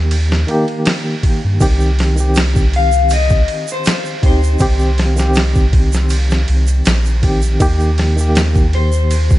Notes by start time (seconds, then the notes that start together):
Already playing: D#2 D#3 A#3 G4
0.11 ride
0.32 snare
0.47 D#3 A#3, ride
0.51 G4
0.68 ride
0.85 snare, ride
1.23 kick, ride
1.44 G2
1.60 C2 D#3 C4 G4, kick, ride, shaker
1.80 shaker
1.99 snare, ride
2.16 D#3 C4, shaker
2.21 G4
2.35 snare, ride, shaker
2.56 kick, shaker
2.73 F5, ride
2.92 shaker
3.10 D#5, ride, shaker
3.29 kick, shaker
3.48 ride
3.68 shaker
3.72 C5
3.85 snare, ride, shaker
4.05 shaker
4.22 D2 C4 D#4 G4, kick, ride
4.26 C5
4.44 shaker
4.59 C2 D#3 C4 G4, kick, ride, shaker
4.79 shaker
4.98 snare, ride
5.16 D#3 C4, snare, shaker
5.20 G4
5.34 snare, ride, shaker
5.55 kick, shaker
5.73 kick, ride
5.93 snare, shaker
6.09 ride, shaker
6.30 snare, shaker
6.48 C2, ride
6.67 ride, shaker
6.85 A#1, snare, ride, shaker
7.05 shaker
7.22 D#3 C4 G4, kick, ride
7.42 shaker
7.60 D#2 D#3 A#3 G4, kick, ride, shaker
7.80 shaker
7.98 snare, ride
8.17 D#3 A#3 G4, shaker
8.35 snare, ride, shaker
8.55 kick, shaker
8.73 C5, ride
8.92 shaker
9.11 ride, shaker
9.30 kick, shaker